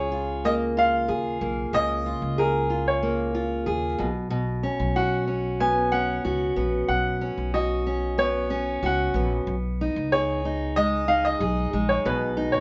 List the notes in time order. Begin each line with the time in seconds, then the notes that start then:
Already playing: C#2 C#3 F4 G#4 C#5
0.12 F4
0.45 A#3 D#5
0.77 F4 F5
1.08 D#2 G#4
1.41 B1 A#3
1.73 C#2 C#3 D#5
2.06 F4
2.22 C#2
2.38 G#4 A#4
2.70 F4
2.88 C#5
3.03 A#3
3.35 F4
3.66 D#2 G#4
3.99 B1 B2
4.30 B2
4.63 C#4
4.80 B1
4.96 F#4 F#5
5.27 C#4
5.60 B3 G#5
5.92 C#4 F#5
6.25 C#2 F#4
6.56 A#1 B3
6.89 B1 F#5
7.21 C#4
7.38 B1
7.54 F#4 D#5
7.87 C#4
8.18 B3 C#5
8.50 C#4
8.83 C#2 F#4 F#5
9.14 A#1 B3
9.47 B1
9.81 D#4
9.96 C#2
10.12 G#4 C#5
10.45 D#4
10.76 G#3 D#5
11.08 D#4 F5
11.25 D#5
11.40 B1 G#4
11.73 A#1 G#3
11.89 C#5
12.05 B1 B2 B4
12.37 D#4
12.52 D#2 C#5